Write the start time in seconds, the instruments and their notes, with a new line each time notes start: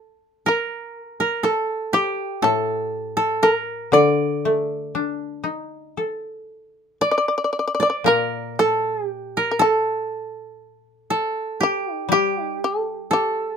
Already playing: koto A4
0.46 koto A#4, shamisen A#4
1.03 shamisen A4
1.20 koto A#4
1.43 koto A4, shamisen A4
1.74 shamisen G4
1.93 koto G4, shamisen G4
2.42 koto A2 A4, shamisen A4
3.17 koto A4
3.43 shamisen A4, koto A#4
3.55 shamisen A#4
3.92 koto D3 D5, shamisen D5
4.45 koto A3
4.95 koto D4
5.44 koto D#4
5.97 koto A4
7.01 koto D5, shamisen D5
7.11 shamisen D5
7.18 shamisen D5
7.28 shamisen D5
7.38 shamisen D5
7.44 shamisen D5
7.53 shamisen D5
7.59 shamisen D5
7.67 shamisen D5
7.75 shamisen D5
7.80 koto D5, shamisen D5
7.90 shamisen D5
8.04 koto A#2 A#4, shamisen A#4
8.59 shamisen A4, koto A4
9.05 koto G4
9.37 koto A#4
9.51 shamisen A#4
9.59 koto A4, shamisen A4
11.10 koto A4
11.61 koto G4, shamisen G4
11.94 shamisen D#4
12.09 koto G3 G4
12.13 shamisen G4
12.44 shamisen D#4
12.64 shamisen A4
13.11 shamisen G4, koto A4
13.47 shamisen G#4